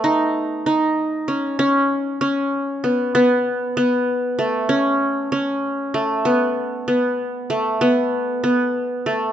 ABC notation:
X:1
M:5/8
L:1/8
Q:1/4=96
K:Alyd
V:1 name="Qanun"
D2 D2 C | C2 C2 B, | B,2 B,2 A, | C2 C2 A, |
B,2 B,2 A, | B,2 B,2 A, |]